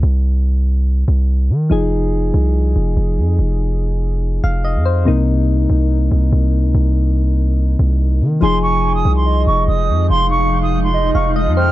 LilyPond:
<<
  \new Staff \with { instrumentName = "Flute" } { \time 4/4 \key f \minor \tempo 4 = 143 r1 | r1 | r1 | r1 |
r1 | c'''8 des'''8. ees'''8 c'''8. des'''8 ees'''4 | c'''8 des'''8. ees'''8 c'''8. des'''8 ees'''8 f'''8 | }
  \new Staff \with { instrumentName = "Soft synth lead" } { \time 4/4 \key f \minor r1 | r1 | r1 | r1 |
r1 | aes''2 ees''2 | f''2 ees''4. g''8 | }
  \new Staff \with { instrumentName = "Synth keys" } { \time 4/4 \key f \minor << { r1 | r1 | r2 r8 f''8 ees''8 c''8 | r1 |
r1 | r1 | r2 r8 f''8 ees''8 c''8 | } \\ { r1 | <f ees' aes'>1~ | <f ees' aes'>1 | <c bes ees'>1~ |
<c bes ees'>1 | <f ees' aes'>1~ | <f ees' aes'>1 | } >> }
  \new Staff \with { instrumentName = "Ambient pad" } { \clef bass \time 4/4 \key f \minor r1 | r1 | r1 | r1 |
r1 | <c f aes ees'>1~ | <c f aes ees'>1 | }
  \new Staff \with { instrumentName = "808-style bass" } { \clef bass \time 4/4 \key f \minor c,2~ c,8 c,4 ees8 | f,,4. c,4 f,,8 f,,8 f,8 | f,,2~ f,,8 f,,8. f,8. | c,4. c,4 c,8 c,8. des,16 |
c,2~ c,8 c,4 ees8 | f,,4. c,4 f,,8 f,,8 f,8 | f,,2~ f,,8 f,,8. f,8. | }
>>